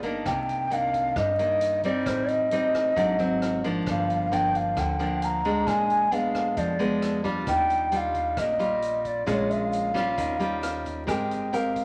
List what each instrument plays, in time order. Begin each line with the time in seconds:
Already playing: upright bass G1
0.03 nylon-string guitar D#3 A#3 D4, kick, closed hi-hat
0.25 upright bass C2, nylon-string guitar C3, bansuri G5, kick, cross-stick, closed hi-hat
0.49 closed hi-hat
0.70 nylon-string guitar D#3 A#3 D4, bansuri F5, closed hi-hat
0.94 kick, closed hi-hat
1.16 upright bass G2, nylon-string guitar G2, bansuri D#5, kick, cross-stick, closed hi-hat
1.39 nylon-string guitar D#3 A#3, closed hi-hat
1.61 closed hi-hat
1.83 nylon-string guitar G3 C4 D#4, bansuri D5, kick, closed hi-hat
2.06 upright bass A1, nylon-string guitar A2, bansuri C5, kick, cross-stick, closed hi-hat
2.28 bansuri D#5, closed hi-hat
2.51 nylon-string guitar G3 C4 D#4, closed hi-hat
2.74 kick, cross-stick, closed hi-hat
2.96 upright bass G#1, nylon-string guitar G#2 F#3 C4 D4, kick, closed hi-hat
3.19 nylon-string guitar F#3 C4, closed hi-hat
3.42 cross-stick, closed hi-hat
3.64 nylon-string guitar F3 A#3 D4, kick, closed hi-hat
3.87 upright bass G1, nylon-string guitar G2, bansuri F5, kick, cross-stick, closed hi-hat
4.10 closed hi-hat
4.32 nylon-string guitar F3 A#3 D4, bansuri G5, closed hi-hat
4.54 bansuri F5, kick, closed hi-hat
4.77 upright bass D2, nylon-string guitar D3, bansuri G5, kick, cross-stick, closed hi-hat
4.99 nylon-string guitar F3 A#3 D4, closed hi-hat
5.22 bansuri A#5, closed hi-hat
5.44 nylon-string guitar G#3 D4, kick, closed hi-hat
5.67 upright bass A#1, nylon-string guitar A#2, bansuri G#5, kick, cross-stick, closed hi-hat
5.90 closed hi-hat
6.11 nylon-string guitar G#3 B3 D4, bansuri F5, closed hi-hat
6.34 kick, cross-stick, closed hi-hat
6.57 upright bass F2, nylon-string guitar F3, bansuri D5, kick, closed hi-hat
6.79 nylon-string guitar G#3 B3 D4, closed hi-hat
7.02 cross-stick, closed hi-hat
7.24 nylon-string guitar G3 D4 F4, kick, closed hi-hat
7.47 upright bass D#2, nylon-string guitar D#3, bansuri G5, kick, cross-stick, closed hi-hat, shaker
7.70 closed hi-hat, shaker
7.92 nylon-string guitar G3 D4 F4, bansuri G5, closed hi-hat, shaker
7.97 bansuri F5
8.14 kick, closed hi-hat, shaker
8.37 upright bass A#1, nylon-string guitar A#2, bansuri D#5, kick, cross-stick, closed hi-hat, shaker
8.59 nylon-string guitar G3 F4, closed hi-hat, shaker
8.82 closed hi-hat, shaker
9.05 bansuri D5, kick, closed hi-hat, shaker
9.26 upright bass A#1, nylon-string guitar A#2 G#3 C#4 F4, bansuri D5, kick, cross-stick, closed hi-hat, shaker
9.34 bansuri C#5
9.51 bansuri E5, closed hi-hat, shaker
9.63 bansuri F5
9.73 closed hi-hat, shaker
9.94 nylon-string guitar G3 C#4 F4, kick, cross-stick, closed hi-hat, shaker
10.17 upright bass D#2, nylon-string guitar D#3, kick, closed hi-hat, shaker
10.39 nylon-string guitar G3 C#4 F4, closed hi-hat, shaker
10.63 cross-stick, closed hi-hat, shaker
10.85 kick, closed hi-hat, shaker
11.07 upright bass G#1, nylon-string guitar G#3 C4 G4 A#4, bansuri G#5, kick, cross-stick, closed hi-hat, shaker
11.12 bansuri G5
11.31 closed hi-hat, shaker
11.53 nylon-string guitar C4 G4 A#4, bansuri F5, closed hi-hat, shaker
11.76 kick, closed hi-hat, shaker